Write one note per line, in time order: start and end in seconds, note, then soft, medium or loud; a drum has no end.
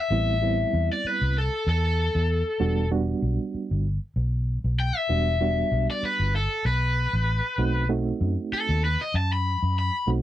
0.00 0.89 E5 medium
0.10 0.64 A1 loud
0.10 0.36 G3 medium
0.10 0.36 B3 medium
0.10 0.36 C4 medium
0.10 0.36 E4 medium
0.42 1.38 G3 medium
0.42 1.38 B3 medium
0.42 1.38 C4 medium
0.42 1.38 E4 medium
0.73 0.88 E2 medium
0.93 1.07 D5 medium
1.05 1.36 B4 medium
1.05 muted fingered electric bass stroke soft
1.21 1.48 C2 medium
1.38 1.67 A4 medium
1.67 2.08 E2 medium
1.67 2.89 A4 medium
2.15 2.41 E2 medium
2.60 3.13 E1 loud
2.60 2.85 G3 medium
2.60 2.85 B3 medium
2.60 2.85 D4 medium
2.60 2.85 F#4 medium
2.91 3.87 G3 medium
2.91 3.87 B3 medium
2.91 3.87 D4 medium
2.91 3.87 F#4 loud
3.22 3.37 B1 medium
3.54 muted fingered electric bass stroke soft
3.71 3.97 G1 medium
4.16 4.57 B1 medium
4.64 4.91 B1 medium
4.80 4.97 G5 medium
4.97 5.87 E5 medium
5.09 5.62 E1 medium
5.09 5.34 G3 medium
5.09 5.34 B3 medium
5.09 5.34 D4 medium
5.09 5.34 F#4 medium
5.41 6.36 G3 medium
5.41 6.36 B3 medium
5.41 6.36 D4 medium
5.41 6.37 F#4 medium
5.72 5.86 B1 medium
5.91 6.03 D5 medium
6.03 6.34 B4 medium
6.03 muted fingered electric bass stroke soft
6.20 6.46 G1 medium
6.36 6.65 A4 medium
6.65 7.06 B1 medium
6.65 7.87 B4 loud
7.13 7.40 A1 medium
7.58 8.11 B1 medium
7.58 7.83 A3 medium
7.58 7.83 C4 medium
7.58 7.83 D#4 medium
7.58 7.83 F#4 medium
7.89 8.85 A3 medium
7.89 8.85 C4 medium
7.89 8.85 D#4 medium
7.89 8.86 F#4 medium
8.21 8.35 F#2 medium
8.52 8.83 A4 medium
8.52 muted fingered electric bass stroke soft
8.69 8.96 D#2 medium
8.85 9.00 B4 medium
9.01 9.14 D#5 medium
9.14 9.55 F#2 medium
9.14 9.32 A5 medium
9.33 9.76 B5 medium
9.63 9.89 F#2 medium
9.79 10.08 B5 medium
10.07 10.22 B1 loud
10.07 10.22 A3 medium
10.07 10.22 C4 medium
10.07 10.22 D#4 medium
10.07 10.22 F#4 medium